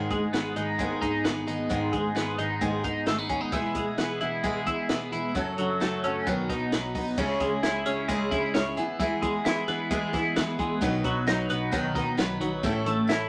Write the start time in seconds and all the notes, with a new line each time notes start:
Already playing: G#2 D#3 G#3 B3 D#4
0.10 G#1 G#3 B3 D#4 G#4, kick, closed hi-hat
0.33 G#1 G#3 B3 D#4 G#4, snare, closed hi-hat
0.56 G#1 G#3 B3 D#4 G#4, closed hi-hat
0.79 G#1 G#2 D#3 G#3 B3 D#4 G#4, kick, closed hi-hat
1.02 G#2 G#3 B3 D#4 G#4, kick, closed hi-hat
1.24 G#1 G#3 B3 D#4 G#4, snare, closed hi-hat
1.47 G#1 G#3 B3 D#4 G#4, closed hi-hat
1.69 G#1 G#2 D#3 G#3 B3 D#4 G#4, kick, closed hi-hat
1.93 G#1 G#3 B3 D#4 G#4, kick, closed hi-hat
2.15 G#1 G#3 B3 D#4 G#4, snare, closed hi-hat
2.38 G#1 G#3 B3 D#4 G#4, closed hi-hat
2.61 G#1 G#2 D#3 G#3 B3 D#4 G#4, kick, closed hi-hat
2.83 G#2 G#3 B3 D#4 G#4, kick, closed hi-hat
3.06 G#1 G#3 A3 B3 D#4 G#4, snare, closed hi-hat
3.18 B3
3.29 G#1 G#3 B3 C#4 D#4 G#4, kick, closed hi-hat
3.41 D#4
3.52 E1 E3 G#3 B3 E4 G#4, kick, closed hi-hat
3.75 E1 G#3 B3 E4 G#4, kick, closed hi-hat
3.98 E1 G#3 B3 E4 G#4, snare, closed hi-hat
4.20 E1 B3 E4 G#4, closed hi-hat
4.44 E1 E3 G#3 B3 E4 G#4, kick, closed hi-hat
4.66 E2 B3 E4 G#4, kick, closed hi-hat
4.89 E1 G#3 B3 E4 G#4, snare, closed hi-hat
5.12 E1 B3 E4 G#4, closed hi-hat
5.35 F#1 F#2 F#3 C#4 F#4 A4, kick, closed hi-hat
5.58 F#1 F#3 C#4 F#4 A4, closed hi-hat
5.80 F#1 F#3 A3 C#4 F#4 A4, snare, closed hi-hat
6.03 F#1 C#4 F#4 A4, closed hi-hat
6.26 B1 B2 D#3 F#3 B3 D#4 B4, kick, closed hi-hat
6.49 B2 F#3 B3 D#4 B4, kick, snare, closed hi-hat
6.72 B1 F#3 B3 D#4 B4, snare, closed hi-hat
6.95 B1 F#3 B3 D#4 B4, kick, open hi-hat
7.18 C#2 C#3 G#3 C#4 E4 G#4, kick, crash
7.40 C#2 G#3 C#4 E4 G#4, kick, closed hi-hat
7.63 C#2 G#3 C#4 E4 G#4, snare, closed hi-hat
7.86 C#2 C#4 E4 G#4, closed hi-hat
8.08 C#2 C#3 G#3 C#4 E4 G#4, kick, closed hi-hat
8.31 C#3 C#4 E4 G#4, kick, closed hi-hat
8.54 C#2 G#3 C#4 E4 G#4, snare, closed hi-hat
8.77 E2 E3 B3 E4 G#4, closed hi-hat
9.00 E3 G#3 B3 E4 G#4, kick, closed hi-hat
9.22 E2 G#3 B3 E4 G#4, kick, closed hi-hat
9.45 E2 G#3 B3 E4 G#4, snare, closed hi-hat
9.68 E2 B3 E4 G#4, closed hi-hat
9.90 E2 E3 G#3 B3 E4 G#4, kick, closed hi-hat
10.13 E3 B3 E4 G#4, kick, snare, closed hi-hat
10.36 E2 G#3 B3 E4 G#4, snare, closed hi-hat
10.59 E2 G#3 B3 E4 G#4, kick, closed hi-hat
10.81 B1 B2 D#3 F#3 B3 D#4 B4, kick, closed hi-hat
11.04 B1 F#3 B3 D#4 B4, kick, closed hi-hat
11.27 B1 F#3 B3 D#4 B4, snare, closed hi-hat
11.49 B1 F#3 B3 D#4 B4, closed hi-hat
11.72 B1 B2 D#3 F#3 B3 D#4 B4, kick, closed hi-hat
11.95 B2 F#3 B3 D#4 B4, kick, snare, closed hi-hat
12.17 B1 F#3 B3 D#4 B4, snare, closed hi-hat
12.41 B1 F#3 B3 D#4 B4, closed hi-hat
12.63 A1 A2 E3 A3 C#4 E4 A4, kick, closed hi-hat
12.86 A1 A3 C#4 E4 A4, closed hi-hat
13.07 A1 A3 C#4 E4 A4, snare, closed hi-hat